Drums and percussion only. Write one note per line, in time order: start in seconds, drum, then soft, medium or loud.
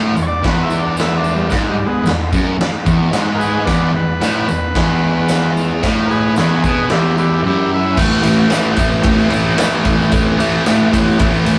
0.17 tambourine medium
0.44 kick loud
0.44 snare loud
0.44 crash medium
0.70 tambourine medium
0.97 snare loud
0.97 tambourine loud
0.97 crash medium
1.24 tambourine medium
1.50 kick loud
1.50 snare loud
1.50 tambourine medium
1.50 crash medium
2.06 snare loud
2.06 tambourine medium
2.06 crash medium
2.32 kick loud
2.32 tambourine medium
2.61 snare loud
2.61 crash medium
2.86 kick loud
2.86 tambourine medium
3.13 snare loud
3.13 tambourine loud
3.13 crash medium
3.41 tambourine medium
3.67 kick loud
3.67 snare loud
3.67 tambourine medium
3.67 crash medium
4.21 snare loud
4.21 tambourine loud
4.21 crash medium
4.49 tambourine medium
4.75 kick loud
4.75 snare loud
4.75 crash medium
5.28 snare loud
5.28 tambourine loud
5.28 crash medium
5.57 tambourine medium
5.83 kick medium
5.83 snare loud
5.83 tambourine medium
5.83 crash medium
6.11 tambourine soft
6.36 snare medium
6.36 tambourine loud
6.36 crash medium
6.64 kick loud
6.64 tambourine medium
6.90 snare loud
6.90 crash medium
7.18 tambourine medium
7.97 kick loud
7.97 crash loud
7.97 tambourine medium
8.23 ride medium
8.23 tambourine medium
8.50 snare loud
8.50 ride medium
8.50 tambourine loud
8.77 kick medium
8.77 ride medium
8.77 tambourine medium
8.92 tambourine soft
9.03 kick loud
9.03 ride loud
9.20 tambourine soft
9.30 ride medium
9.30 tambourine medium
9.47 tambourine soft
9.58 snare loud
9.58 ride loud
9.58 tambourine loud
9.85 kick medium
9.85 ride medium
9.85 tambourine soft
10.00 tambourine soft
10.12 kick loud
10.12 ride loud
10.12 tambourine medium
10.40 ride medium
10.40 tambourine medium
10.66 snare medium
10.66 ride medium
10.66 tambourine medium
10.93 kick medium
10.93 ride medium
10.93 tambourine medium
11.08 tambourine soft
11.19 kick loud
11.19 ride loud
11.35 tambourine soft
11.46 ride medium
11.46 tambourine medium